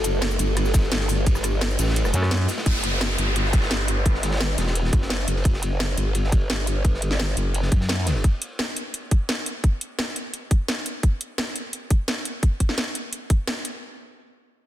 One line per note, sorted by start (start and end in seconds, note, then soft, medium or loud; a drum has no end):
0.00 0.38 F#1 loud
0.00 2.62 A3 medium
0.00 2.62 F#4 medium
0.00 2.64 A4 medium
0.00 ride medium
0.04 closed hi-hat loud
0.04 ride bell medium
0.04 shaker medium
0.22 snare loud
0.22 closed hi-hat medium
0.22 ride medium
0.22 ride bell medium
0.31 shaker soft
0.39 1.77 G1 loud
0.39 closed hi-hat loud
0.39 ride medium
0.39 ride bell medium
0.39 shaker medium
0.57 cross-stick soft
0.57 closed hi-hat medium
0.57 ride medium
0.57 ride bell medium
0.65 snare soft
0.65 shaker soft
0.74 kick loud
0.74 snare loud
0.74 closed hi-hat medium
0.74 ride medium
0.74 ride bell medium
0.74 shaker medium
0.83 snare soft
0.92 snare loud
0.92 closed hi-hat medium
0.92 ride bell medium
1.00 snare loud
1.00 ride medium
1.09 snare soft
1.09 open hi-hat medium
1.09 ride bell medium
1.09 shaker medium
1.17 ride medium
1.26 kick loud
1.26 closed hi-hat medium
1.26 ride medium
1.26 ride bell medium
1.35 cross-stick soft
1.35 snare soft
1.35 shaker soft
1.43 cross-stick soft
1.43 closed hi-hat loud
1.43 ride medium
1.43 ride bell medium
1.43 shaker medium
1.61 snare loud
1.61 closed hi-hat medium
1.61 ride medium
1.61 ride bell medium
1.69 snare soft
1.69 shaker soft
1.79 2.12 A1 loud
1.79 snare medium
1.79 closed hi-hat loud
1.79 ride medium
1.79 ride bell medium
1.79 shaker medium
1.83 snare medium
1.83 ride medium
1.87 snare medium
1.87 ride medium
1.92 snare loud
1.92 ride medium
1.96 closed hi-hat medium
1.96 ride medium
1.96 ride bell medium
2.05 cross-stick soft
2.05 snare medium
2.05 shaker soft
2.14 2.47 F#2 loud
2.14 closed hi-hat loud
2.14 ride medium
2.14 ride bell medium
2.14 shaker medium
2.22 cross-stick medium
2.22 snare medium
2.31 snare loud
2.31 closed hi-hat medium
2.31 ride medium
2.31 ride bell medium
2.40 snare medium
2.48 snare loud
2.48 open hi-hat medium
2.48 ride medium
2.48 ride bell medium
2.48 shaker medium
2.58 snare loud
2.58 ride medium
2.66 3.17 F#1 loud
2.66 kick loud
2.66 closed hi-hat medium
2.66 ride medium
2.66 downlifter medium
2.75 snare medium
2.84 closed hi-hat medium
2.84 ride medium
3.01 snare loud
3.01 closed hi-hat medium
3.18 4.57 G1 medium
3.18 closed hi-hat loud
3.18 ride medium
3.36 closed hi-hat medium
3.36 ride medium
3.45 snare soft
3.53 kick loud
3.53 snare loud
3.53 closed hi-hat medium
3.53 ride medium
3.62 snare loud
3.62 ride medium
3.70 snare loud
3.70 closed hi-hat medium
3.87 closed hi-hat medium
3.87 ride medium
3.97 ride soft
4.05 kick loud
4.05 closed hi-hat medium
4.05 ride medium
4.14 snare soft
4.23 snare medium
4.23 closed hi-hat medium
4.23 ride medium
4.31 snare medium
4.31 ride medium
4.36 snare medium
4.36 ride medium
4.41 snare loud
4.41 closed hi-hat medium
4.49 snare soft
4.58 4.91 E1 loud
4.58 snare loud
4.58 closed hi-hat medium
4.58 ride medium
4.67 snare loud
4.67 ride medium
4.75 closed hi-hat medium
4.75 ride medium
4.84 snare medium
4.92 5.26 F#1 medium
4.92 kick loud
4.92 closed hi-hat medium
4.92 ride medium
5.02 snare medium
5.09 snare loud
5.09 closed hi-hat medium
5.19 snare medium
5.28 5.44 F#1 loud
5.28 closed hi-hat medium
5.28 ride medium
5.36 snare soft
5.44 5.96 F#1 loud
5.44 kick loud
5.44 closed hi-hat medium
5.44 ride medium
5.54 snare medium
5.63 closed hi-hat medium
5.63 ride medium
5.80 snare loud
5.80 closed hi-hat medium
5.97 7.36 G1 medium
5.97 closed hi-hat medium
5.97 ride medium
6.15 closed hi-hat medium
6.15 ride medium
6.24 snare soft
6.32 kick loud
6.32 closed hi-hat medium
6.32 ride medium
6.41 ride soft
6.50 snare loud
6.50 closed hi-hat medium
6.67 closed hi-hat medium
6.67 ride medium
6.75 ride soft
6.84 kick loud
6.84 closed hi-hat medium
6.84 ride medium
6.94 snare soft
7.02 closed hi-hat medium
7.02 ride medium
7.11 snare soft
7.19 snare loud
7.19 closed hi-hat medium
7.28 snare soft
7.37 7.70 F#1 loud
7.37 closed hi-hat medium
7.37 ride medium
7.54 closed hi-hat medium
7.54 ride medium
7.62 snare medium
7.71 8.23 F#2 medium
7.71 kick loud
7.71 closed hi-hat medium
7.71 ride medium
7.81 snare medium
7.89 snare loud
7.89 closed hi-hat medium
7.89 ride medium
7.98 snare soft
8.06 snare loud
8.06 closed hi-hat medium
8.06 ride medium
8.15 snare soft
8.24 kick loud
8.24 closed hi-hat medium
8.42 closed hi-hat medium
8.59 snare loud
8.59 closed hi-hat medium
8.77 closed hi-hat medium
8.94 closed hi-hat medium
9.11 kick loud
9.11 closed hi-hat medium
9.29 snare loud
9.29 closed hi-hat medium
9.46 closed hi-hat medium
9.64 kick loud
9.64 closed hi-hat medium
9.81 closed hi-hat medium
9.99 snare loud
9.99 closed hi-hat medium
10.16 closed hi-hat medium
10.34 closed hi-hat medium
10.51 kick loud
10.51 closed hi-hat medium
10.68 snare loud
10.68 closed hi-hat medium
10.86 closed hi-hat medium
11.03 kick loud
11.03 closed hi-hat medium
11.21 closed hi-hat medium
11.38 snare loud
11.38 closed hi-hat medium
11.56 closed hi-hat medium
11.73 closed hi-hat medium
11.90 kick loud
11.90 closed hi-hat medium
12.08 snare loud
12.08 closed hi-hat medium
12.25 closed hi-hat medium
12.43 kick loud
12.43 closed hi-hat medium
12.60 kick medium
12.60 closed hi-hat medium
12.69 snare soft
12.78 snare loud
12.78 closed hi-hat medium
12.95 closed hi-hat medium
13.13 closed hi-hat medium
13.30 kick loud
13.30 closed hi-hat medium
13.47 snare loud
13.47 closed hi-hat medium
13.65 closed hi-hat loud